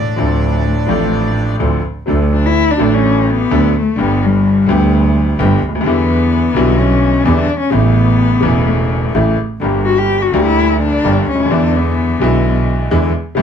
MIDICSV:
0, 0, Header, 1, 5, 480
1, 0, Start_track
1, 0, Key_signature, 2, "major"
1, 0, Tempo, 474684
1, 188, Time_signature, 4, 2, 24, 8
1, 4032, Tempo, 466200
1, 7872, Tempo, 476190
1, 10752, Tempo, 467290
1, 13675, End_track
2, 0, Start_track
2, 0, Title_t, "Bandoneon"
2, 0, Program_c, 0, 23
2, 0, Note_on_c, 0, 62, 50
2, 0, Note_on_c, 0, 74, 62
2, 1579, Note_off_c, 0, 74, 0
2, 1582, Note_off_c, 0, 62, 0
2, 13675, End_track
3, 0, Start_track
3, 0, Title_t, "Cello"
3, 0, Program_c, 1, 42
3, 0, Note_on_c, 1, 45, 64
3, 1588, Note_off_c, 1, 45, 0
3, 2356, Note_on_c, 1, 62, 81
3, 2489, Note_on_c, 1, 64, 98
3, 2505, Note_off_c, 1, 62, 0
3, 2742, Note_on_c, 1, 62, 82
3, 2757, Note_off_c, 1, 64, 0
3, 2974, Note_on_c, 1, 61, 87
3, 2990, Note_off_c, 1, 62, 0
3, 3252, Note_off_c, 1, 61, 0
3, 3252, Note_on_c, 1, 61, 64
3, 3338, Note_on_c, 1, 59, 92
3, 3353, Note_off_c, 1, 61, 0
3, 3807, Note_off_c, 1, 59, 0
3, 3837, Note_on_c, 1, 57, 76
3, 4061, Note_on_c, 1, 59, 86
3, 4077, Note_off_c, 1, 57, 0
3, 4306, Note_on_c, 1, 55, 73
3, 4322, Note_off_c, 1, 59, 0
3, 5257, Note_off_c, 1, 55, 0
3, 5956, Note_on_c, 1, 59, 89
3, 6902, Note_on_c, 1, 61, 86
3, 6917, Note_off_c, 1, 59, 0
3, 7377, Note_on_c, 1, 59, 78
3, 7392, Note_off_c, 1, 61, 0
3, 7516, Note_on_c, 1, 62, 92
3, 7531, Note_off_c, 1, 59, 0
3, 7735, Note_off_c, 1, 62, 0
3, 7741, Note_on_c, 1, 61, 87
3, 7861, Note_on_c, 1, 59, 92
3, 7876, Note_off_c, 1, 61, 0
3, 8824, Note_on_c, 1, 57, 67
3, 8840, Note_off_c, 1, 59, 0
3, 9308, Note_off_c, 1, 57, 0
3, 10020, Note_on_c, 1, 66, 81
3, 10154, Note_on_c, 1, 67, 88
3, 10169, Note_off_c, 1, 66, 0
3, 10394, Note_on_c, 1, 66, 83
3, 10409, Note_off_c, 1, 67, 0
3, 10628, Note_off_c, 1, 66, 0
3, 10634, Note_on_c, 1, 64, 86
3, 10970, Note_off_c, 1, 64, 0
3, 11005, Note_on_c, 1, 62, 94
3, 11451, Note_off_c, 1, 62, 0
3, 11489, Note_on_c, 1, 61, 78
3, 11713, Note_on_c, 1, 62, 76
3, 11729, Note_off_c, 1, 61, 0
3, 11973, Note_on_c, 1, 59, 68
3, 11988, Note_off_c, 1, 62, 0
3, 12925, Note_off_c, 1, 59, 0
3, 13675, End_track
4, 0, Start_track
4, 0, Title_t, "Upright piano"
4, 0, Program_c, 2, 0
4, 164, Note_on_c, 2, 53, 59
4, 172, Note_on_c, 2, 60, 48
4, 181, Note_on_c, 2, 50, 68
4, 186, Note_on_c, 2, 38, 70
4, 190, Note_on_c, 2, 62, 56
4, 201, Note_on_c, 2, 69, 59
4, 849, Note_off_c, 2, 53, 0
4, 854, Note_off_c, 2, 60, 0
4, 858, Note_off_c, 2, 50, 0
4, 861, Note_off_c, 2, 38, 0
4, 863, Note_off_c, 2, 62, 0
4, 868, Note_off_c, 2, 69, 0
4, 875, Note_on_c, 2, 53, 67
4, 892, Note_on_c, 2, 60, 63
4, 897, Note_on_c, 2, 33, 67
4, 898, Note_on_c, 2, 45, 78
4, 904, Note_on_c, 2, 62, 57
4, 919, Note_on_c, 2, 69, 77
4, 1577, Note_off_c, 2, 53, 0
4, 1586, Note_off_c, 2, 60, 0
4, 1588, Note_off_c, 2, 33, 0
4, 1589, Note_off_c, 2, 45, 0
4, 1591, Note_off_c, 2, 62, 0
4, 1599, Note_off_c, 2, 69, 0
4, 1614, Note_on_c, 2, 53, 57
4, 1615, Note_on_c, 2, 38, 65
4, 1617, Note_on_c, 2, 60, 52
4, 1618, Note_on_c, 2, 50, 72
4, 1618, Note_on_c, 2, 62, 56
4, 1619, Note_on_c, 2, 69, 63
4, 1824, Note_off_c, 2, 53, 0
4, 1825, Note_off_c, 2, 38, 0
4, 1826, Note_off_c, 2, 50, 0
4, 1826, Note_off_c, 2, 60, 0
4, 1826, Note_off_c, 2, 62, 0
4, 1827, Note_off_c, 2, 69, 0
4, 2081, Note_on_c, 2, 54, 54
4, 2091, Note_on_c, 2, 57, 57
4, 2099, Note_on_c, 2, 38, 69
4, 2103, Note_on_c, 2, 50, 67
4, 2109, Note_on_c, 2, 62, 51
4, 2122, Note_on_c, 2, 69, 67
4, 2780, Note_off_c, 2, 54, 0
4, 2785, Note_off_c, 2, 57, 0
4, 2789, Note_off_c, 2, 38, 0
4, 2791, Note_off_c, 2, 50, 0
4, 2794, Note_off_c, 2, 62, 0
4, 2800, Note_off_c, 2, 69, 0
4, 2807, Note_on_c, 2, 54, 69
4, 2821, Note_on_c, 2, 57, 63
4, 2826, Note_on_c, 2, 33, 85
4, 2826, Note_on_c, 2, 45, 74
4, 2831, Note_on_c, 2, 62, 61
4, 2849, Note_on_c, 2, 69, 69
4, 3505, Note_off_c, 2, 54, 0
4, 3512, Note_off_c, 2, 57, 0
4, 3514, Note_off_c, 2, 33, 0
4, 3514, Note_off_c, 2, 45, 0
4, 3517, Note_off_c, 2, 62, 0
4, 3526, Note_off_c, 2, 69, 0
4, 3550, Note_on_c, 2, 38, 79
4, 3551, Note_on_c, 2, 57, 63
4, 3552, Note_on_c, 2, 54, 65
4, 3552, Note_on_c, 2, 62, 66
4, 3553, Note_on_c, 2, 50, 78
4, 3557, Note_on_c, 2, 69, 78
4, 3754, Note_off_c, 2, 38, 0
4, 3754, Note_off_c, 2, 57, 0
4, 3755, Note_off_c, 2, 50, 0
4, 3755, Note_off_c, 2, 54, 0
4, 3755, Note_off_c, 2, 62, 0
4, 3757, Note_off_c, 2, 69, 0
4, 4005, Note_on_c, 2, 50, 68
4, 4019, Note_on_c, 2, 55, 59
4, 4026, Note_on_c, 2, 31, 70
4, 4028, Note_on_c, 2, 43, 75
4, 4036, Note_on_c, 2, 59, 55
4, 4052, Note_on_c, 2, 67, 73
4, 4708, Note_off_c, 2, 50, 0
4, 4715, Note_off_c, 2, 55, 0
4, 4719, Note_off_c, 2, 31, 0
4, 4720, Note_off_c, 2, 43, 0
4, 4724, Note_off_c, 2, 59, 0
4, 4731, Note_off_c, 2, 67, 0
4, 4731, Note_on_c, 2, 50, 77
4, 4741, Note_on_c, 2, 55, 69
4, 4746, Note_off_c, 2, 50, 0
4, 4752, Note_on_c, 2, 50, 79
4, 4753, Note_on_c, 2, 38, 89
4, 4758, Note_on_c, 2, 59, 60
4, 4770, Note_on_c, 2, 67, 81
4, 5438, Note_off_c, 2, 55, 0
4, 5443, Note_off_c, 2, 50, 0
4, 5444, Note_off_c, 2, 38, 0
4, 5447, Note_off_c, 2, 59, 0
4, 5452, Note_off_c, 2, 67, 0
4, 5475, Note_on_c, 2, 50, 67
4, 5476, Note_on_c, 2, 55, 60
4, 5478, Note_on_c, 2, 31, 87
4, 5480, Note_on_c, 2, 43, 81
4, 5483, Note_on_c, 2, 59, 66
4, 5483, Note_on_c, 2, 67, 80
4, 5680, Note_off_c, 2, 50, 0
4, 5681, Note_off_c, 2, 55, 0
4, 5682, Note_off_c, 2, 31, 0
4, 5683, Note_off_c, 2, 43, 0
4, 5684, Note_off_c, 2, 59, 0
4, 5684, Note_off_c, 2, 67, 0
4, 5782, Note_on_c, 2, 37, 44
4, 5842, Note_off_c, 2, 37, 0
4, 5848, Note_on_c, 2, 38, 65
4, 5905, Note_off_c, 2, 38, 0
4, 5906, Note_on_c, 2, 39, 76
4, 5940, Note_on_c, 2, 50, 73
4, 5952, Note_on_c, 2, 55, 62
4, 5962, Note_on_c, 2, 40, 76
4, 5963, Note_off_c, 2, 39, 0
4, 5963, Note_on_c, 2, 52, 78
4, 5969, Note_on_c, 2, 59, 60
4, 5984, Note_on_c, 2, 64, 72
4, 6629, Note_off_c, 2, 50, 0
4, 6635, Note_off_c, 2, 55, 0
4, 6640, Note_off_c, 2, 40, 0
4, 6640, Note_off_c, 2, 52, 0
4, 6644, Note_off_c, 2, 59, 0
4, 6651, Note_off_c, 2, 64, 0
4, 6661, Note_on_c, 2, 50, 81
4, 6678, Note_on_c, 2, 55, 62
4, 6683, Note_on_c, 2, 35, 88
4, 6684, Note_on_c, 2, 47, 95
4, 6688, Note_on_c, 2, 59, 69
4, 6699, Note_on_c, 2, 64, 79
4, 7351, Note_off_c, 2, 50, 0
4, 7359, Note_off_c, 2, 55, 0
4, 7362, Note_off_c, 2, 35, 0
4, 7362, Note_off_c, 2, 47, 0
4, 7364, Note_off_c, 2, 59, 0
4, 7370, Note_off_c, 2, 64, 0
4, 7392, Note_on_c, 2, 50, 75
4, 7395, Note_on_c, 2, 55, 63
4, 7396, Note_on_c, 2, 40, 89
4, 7396, Note_on_c, 2, 52, 79
4, 7398, Note_on_c, 2, 59, 60
4, 7401, Note_on_c, 2, 64, 75
4, 7595, Note_off_c, 2, 50, 0
4, 7596, Note_off_c, 2, 40, 0
4, 7596, Note_off_c, 2, 52, 0
4, 7596, Note_off_c, 2, 55, 0
4, 7597, Note_off_c, 2, 59, 0
4, 7599, Note_off_c, 2, 64, 0
4, 7860, Note_on_c, 2, 49, 62
4, 7874, Note_on_c, 2, 52, 57
4, 7877, Note_on_c, 2, 45, 77
4, 7879, Note_on_c, 2, 33, 70
4, 7886, Note_on_c, 2, 57, 55
4, 7899, Note_on_c, 2, 64, 68
4, 8544, Note_off_c, 2, 49, 0
4, 8551, Note_off_c, 2, 52, 0
4, 8552, Note_off_c, 2, 45, 0
4, 8553, Note_off_c, 2, 33, 0
4, 8557, Note_off_c, 2, 57, 0
4, 8564, Note_off_c, 2, 64, 0
4, 8566, Note_on_c, 2, 49, 67
4, 8584, Note_on_c, 2, 52, 60
4, 8586, Note_on_c, 2, 40, 83
4, 8589, Note_on_c, 2, 28, 75
4, 8594, Note_on_c, 2, 57, 62
4, 8610, Note_on_c, 2, 64, 76
4, 9262, Note_off_c, 2, 49, 0
4, 9271, Note_off_c, 2, 52, 0
4, 9272, Note_off_c, 2, 40, 0
4, 9274, Note_off_c, 2, 28, 0
4, 9276, Note_off_c, 2, 57, 0
4, 9284, Note_off_c, 2, 64, 0
4, 9315, Note_on_c, 2, 49, 59
4, 9316, Note_on_c, 2, 45, 78
4, 9316, Note_on_c, 2, 52, 50
4, 9318, Note_on_c, 2, 33, 69
4, 9318, Note_on_c, 2, 57, 57
4, 9321, Note_on_c, 2, 64, 62
4, 9516, Note_off_c, 2, 45, 0
4, 9516, Note_off_c, 2, 49, 0
4, 9517, Note_off_c, 2, 33, 0
4, 9517, Note_off_c, 2, 52, 0
4, 9517, Note_off_c, 2, 57, 0
4, 9519, Note_off_c, 2, 64, 0
4, 9769, Note_on_c, 2, 50, 55
4, 9781, Note_on_c, 2, 55, 57
4, 9787, Note_on_c, 2, 31, 69
4, 9793, Note_on_c, 2, 43, 67
4, 9797, Note_on_c, 2, 58, 51
4, 9810, Note_on_c, 2, 67, 69
4, 10467, Note_off_c, 2, 50, 0
4, 10473, Note_off_c, 2, 55, 0
4, 10476, Note_off_c, 2, 31, 0
4, 10479, Note_off_c, 2, 43, 0
4, 10481, Note_off_c, 2, 58, 0
4, 10487, Note_off_c, 2, 67, 0
4, 10493, Note_on_c, 2, 50, 64
4, 10505, Note_on_c, 2, 55, 60
4, 10508, Note_off_c, 2, 50, 0
4, 10511, Note_on_c, 2, 38, 89
4, 10513, Note_on_c, 2, 50, 73
4, 10519, Note_on_c, 2, 58, 64
4, 10530, Note_on_c, 2, 67, 82
4, 11197, Note_off_c, 2, 55, 0
4, 11200, Note_off_c, 2, 38, 0
4, 11201, Note_off_c, 2, 50, 0
4, 11203, Note_off_c, 2, 58, 0
4, 11209, Note_off_c, 2, 67, 0
4, 11234, Note_on_c, 2, 55, 57
4, 11235, Note_on_c, 2, 31, 74
4, 11236, Note_on_c, 2, 50, 69
4, 11239, Note_on_c, 2, 43, 79
4, 11240, Note_on_c, 2, 67, 77
4, 11241, Note_on_c, 2, 58, 58
4, 11439, Note_off_c, 2, 31, 0
4, 11439, Note_off_c, 2, 55, 0
4, 11440, Note_off_c, 2, 50, 0
4, 11441, Note_off_c, 2, 43, 0
4, 11442, Note_off_c, 2, 58, 0
4, 11442, Note_off_c, 2, 67, 0
4, 11546, Note_on_c, 2, 37, 46
4, 11597, Note_on_c, 2, 38, 58
4, 11603, Note_off_c, 2, 37, 0
4, 11653, Note_on_c, 2, 39, 69
4, 11659, Note_off_c, 2, 38, 0
4, 11687, Note_on_c, 2, 50, 66
4, 11705, Note_on_c, 2, 56, 54
4, 11709, Note_on_c, 2, 40, 77
4, 11711, Note_on_c, 2, 52, 73
4, 11717, Note_off_c, 2, 39, 0
4, 11721, Note_on_c, 2, 59, 60
4, 11733, Note_on_c, 2, 64, 69
4, 12387, Note_off_c, 2, 50, 0
4, 12396, Note_off_c, 2, 56, 0
4, 12398, Note_off_c, 2, 40, 0
4, 12399, Note_off_c, 2, 52, 0
4, 12404, Note_off_c, 2, 59, 0
4, 12410, Note_off_c, 2, 64, 0
4, 12413, Note_on_c, 2, 50, 70
4, 12429, Note_on_c, 2, 56, 68
4, 12435, Note_on_c, 2, 47, 82
4, 12437, Note_on_c, 2, 35, 85
4, 12443, Note_on_c, 2, 59, 64
4, 12459, Note_on_c, 2, 64, 89
4, 13109, Note_off_c, 2, 50, 0
4, 13117, Note_off_c, 2, 56, 0
4, 13120, Note_off_c, 2, 47, 0
4, 13121, Note_off_c, 2, 35, 0
4, 13124, Note_off_c, 2, 59, 0
4, 13132, Note_off_c, 2, 64, 0
4, 13153, Note_on_c, 2, 50, 67
4, 13154, Note_on_c, 2, 52, 79
4, 13154, Note_on_c, 2, 56, 67
4, 13154, Note_on_c, 2, 64, 87
4, 13155, Note_on_c, 2, 40, 78
4, 13155, Note_on_c, 2, 59, 68
4, 13356, Note_off_c, 2, 50, 0
4, 13356, Note_off_c, 2, 64, 0
4, 13357, Note_off_c, 2, 40, 0
4, 13357, Note_off_c, 2, 52, 0
4, 13357, Note_off_c, 2, 56, 0
4, 13357, Note_off_c, 2, 59, 0
4, 13602, Note_on_c, 2, 49, 68
4, 13616, Note_on_c, 2, 55, 59
4, 13622, Note_on_c, 2, 45, 85
4, 13623, Note_on_c, 2, 33, 80
4, 13631, Note_on_c, 2, 57, 67
4, 13675, Note_off_c, 2, 33, 0
4, 13675, Note_off_c, 2, 45, 0
4, 13675, Note_off_c, 2, 49, 0
4, 13675, Note_off_c, 2, 55, 0
4, 13675, Note_off_c, 2, 57, 0
4, 13675, End_track
5, 0, Start_track
5, 0, Title_t, "Double bass"
5, 0, Program_c, 3, 43
5, 184, Note_on_c, 3, 38, 80
5, 860, Note_off_c, 3, 38, 0
5, 891, Note_on_c, 3, 33, 69
5, 1585, Note_off_c, 3, 33, 0
5, 1620, Note_on_c, 3, 38, 74
5, 1827, Note_off_c, 3, 38, 0
5, 2114, Note_on_c, 3, 38, 90
5, 2796, Note_off_c, 3, 38, 0
5, 2835, Note_on_c, 3, 33, 72
5, 3519, Note_off_c, 3, 33, 0
5, 3551, Note_on_c, 3, 38, 83
5, 3754, Note_off_c, 3, 38, 0
5, 4033, Note_on_c, 3, 31, 83
5, 4722, Note_off_c, 3, 31, 0
5, 4758, Note_on_c, 3, 38, 90
5, 5446, Note_off_c, 3, 38, 0
5, 5479, Note_on_c, 3, 31, 102
5, 5683, Note_off_c, 3, 31, 0
5, 5722, Note_on_c, 3, 38, 62
5, 5952, Note_off_c, 3, 38, 0
5, 5958, Note_on_c, 3, 40, 92
5, 6638, Note_off_c, 3, 40, 0
5, 6675, Note_on_c, 3, 35, 88
5, 7358, Note_off_c, 3, 35, 0
5, 7391, Note_on_c, 3, 40, 86
5, 7594, Note_off_c, 3, 40, 0
5, 7876, Note_on_c, 3, 33, 94
5, 8552, Note_off_c, 3, 33, 0
5, 8585, Note_on_c, 3, 28, 81
5, 9272, Note_off_c, 3, 28, 0
5, 9305, Note_on_c, 3, 33, 80
5, 9511, Note_off_c, 3, 33, 0
5, 9785, Note_on_c, 3, 31, 76
5, 10475, Note_off_c, 3, 31, 0
5, 10503, Note_on_c, 3, 38, 74
5, 11196, Note_off_c, 3, 38, 0
5, 11234, Note_on_c, 3, 31, 80
5, 11439, Note_off_c, 3, 31, 0
5, 11473, Note_on_c, 3, 38, 57
5, 11713, Note_off_c, 3, 38, 0
5, 11719, Note_on_c, 3, 40, 89
5, 12403, Note_off_c, 3, 40, 0
5, 12436, Note_on_c, 3, 35, 81
5, 13121, Note_off_c, 3, 35, 0
5, 13145, Note_on_c, 3, 40, 93
5, 13352, Note_off_c, 3, 40, 0
5, 13630, Note_on_c, 3, 33, 97
5, 13675, Note_off_c, 3, 33, 0
5, 13675, End_track
0, 0, End_of_file